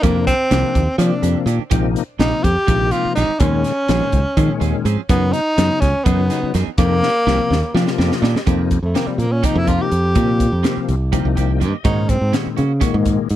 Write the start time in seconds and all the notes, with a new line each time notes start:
0.02 F2 C3 D#3 F3 A#3 D4 G4, kick, closed hi-hat
0.27 C4, kick, closed hi-hat
0.50 C2 C3 D#3 F3 A#3 D4 G4, snare, closed hi-hat
0.64 muted fingered electric bass stroke
0.75 D#2, kick, closed hi-hat
0.87 muted fingered electric bass stroke
0.98 C3 D#3 F3 A#3 C4 D4 G4, closed hi-hat
1.22 F2 A#3 D4 G4, closed hi-hat
1.46 A#2 D#3 A#3 D4 G4, closed hi-hat
1.59 muted fingered electric bass stroke
1.70 A#1 C3 D#3 F3 G#3 A#3 C4 D#4 G4, kick, closed hi-hat
1.96 closed hi-hat
2.19 A#1 C3 D#3 F3 G#3 A#3 C4 D#4 G4, snare, closed hi-hat
2.44 F2 G4, kick, closed hi-hat
2.56 muted fingered electric bass stroke
2.67 A#1 C3 D#3 F3 G#3 A#3 C4 D#4 G4, kick, closed hi-hat
2.91 G#3 C4 F4 G4, closed hi-hat
3.05 muted fingered electric bass stroke
3.15 A#1 D#3 G#3 C4 D#4 G4, snare, closed hi-hat
3.29 muted fingered electric bass stroke
3.39 D#2 A#2 D#3 F3 G#3 C4 C#4 G#4, kick, closed hi-hat
3.64 snare, closed hi-hat
3.88 A#1 A#2 D#3 F3 G#3 C4 C#4 G#4 C5, snare, closed hi-hat
4.12 C#2, kick, closed hi-hat
4.25 muted fingered electric bass stroke
4.37 A#2 D#3 F3 G#3 C4 C#4 G#4, kick, closed hi-hat
4.60 D#2 C4 C#4 G#4, closed hi-hat
4.85 G#2 F3 C4 C#4 G#4, closed hi-hat
4.96 muted fingered electric bass stroke
5.09 F#2 C#3 E3 F#3 B3 D#4 G#4, kick, closed hi-hat
5.32 D#4, closed hi-hat
5.57 F#2 C#3 E3 F#3 B3 D#4 G#4, snare, closed hi-hat
5.80 C#2 C#4, kick, snare, closed hi-hat
5.94 muted fingered electric bass stroke
6.04 F#2 C#3 E3 F#3 B3 D#4 G#4, kick, closed hi-hat
6.30 B3 D#4 G#4, snare, closed hi-hat
6.43 muted fingered electric bass stroke
6.54 F#2 E3 B3 D#4 G#4, snare, closed hi-hat
6.67 muted fingered electric bass stroke
6.78 F2 C3 D#3 F3 A#3 D4 D#4 G4, kick, closed hi-hat
7.03 snare
7.26 C2 C3 D#3 F3 A#3 C4 D4 G4, snare
7.39 muted fingered electric bass stroke
7.50 D#2, snare
7.63 muted fingered electric bass stroke
7.74 C3 D#3 F3 A#3 D4 F4 G4, snare
7.87 snare
7.98 F2 A#3 D4 G4 D#5, snare
8.12 snare
8.22 A#2 D#3 A#3 D4 G4, snare
8.35 muted fingered electric bass stroke, snare
8.46 F2 C3 D#3 F3 A#3 C4 D#4 G4, kick, closed hi-hat
8.71 kick, closed hi-hat
8.83 F2 A3
8.94 C3 D#3 F3 A#3 C4 G4, snare, closed hi-hat
9.07 G3, muted fingered electric bass stroke
9.18 A#2 A#3, closed hi-hat
9.32 C#4
9.43 C3 D#3 F3 A#3 C4 D#4 G4, kick, closed hi-hat
9.55 F2 E4
9.67 A#3 C4 F4 G4, kick, closed hi-hat
9.82 G4
9.92 F2, closed hi-hat
10.15 A#2 C3 D#3 F3 A#3 C4 G4, kick, closed hi-hat
10.40 kick, closed hi-hat
10.52 F2
10.63 C3 D#3 F3 A#3 C4 G4, snare, closed hi-hat
10.77 muted fingered electric bass stroke
10.89 C2, closed hi-hat
11.12 C3 D#3 F3 A#3 C4 D#4 G4, kick, closed hi-hat
11.25 C2
11.36 A#3 C4 G4 G5, kick, closed hi-hat
11.60 G2 D#3 A#3 C4 G4 D#5, closed hi-hat
11.84 G#2 A#2 D#3 G#3 A#3 C#4 D#4 F#4, kick, closed hi-hat
12.09 C4, kick, closed hi-hat
12.21 G#2
12.32 A#2 D#3 G#3 A#3 C4 C#4 F#4, snare, closed hi-hat
12.46 muted fingered electric bass stroke
12.57 C#3 A#3 C#4 F#4, closed hi-hat
12.80 A#2 D#3 G#3 A#3 C#4 F#4, kick, snare, closed hi-hat
12.94 G#2
13.05 kick, closed hi-hat
13.29 G#2, closed hi-hat